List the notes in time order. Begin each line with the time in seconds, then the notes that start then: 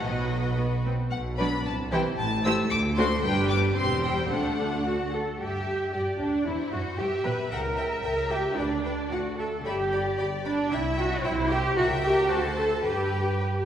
0.04 B1 B2 F#3 F#4 B4 D#5
0.59 B3
0.85 C4
1.10 B1 B2 F#5
1.38 F#3 D4 B4 D5 B5
1.65 C2 C3 A5
1.91 E3 E4 G4 C5 G5
2.18 A1 A2 A5
2.45 A3 E4 G4 C5 E6
2.71 D2 D6
2.96 A3 D4 F#4 C5 C6
3.23 G1 G2 G3 D4 G4 B4 G5
3.49 D6
3.77 E1 E2 G3 C4 G4 C5 C6
4.03 G5
4.30 D2 A3 D4 A4 F#5
4.86 F#4
5.13 A4
5.39 G2 G4 E5
5.93 G2 G4 D5
6.19 D2 D4
6.46 E2 E4 C5
6.72 F#2 F#4
6.98 G2 G4 E5
7.24 B2 B4
7.51 C#2 A#4 E5 F#5 G5
7.77 E5 G5
8.04 C#2 A#4 E5 G5
8.30 G4 E5 G5
8.57 D2 D4 B4 D5 G5
8.85 B4 G5
9.11 D2 F#4 F#5
9.38 A4 E5
9.65 G1 G4 D5 E5 B5
9.92 D5 B5
10.18 G1 G4 D5 B5
10.45 D4 D5 B5
10.71 C2 E4 E5 G5
10.98 F#4 E5 G5
11.24 C2 E4 C5 E5 G5
11.51 G4 E5 G5
11.76 C#2 F#4 A#4 E5 G5
12.03 G4
12.30 D2 F#4 A4 C5 A5
12.57 A4
12.84 G2 G4 B4 G5
13.40 B4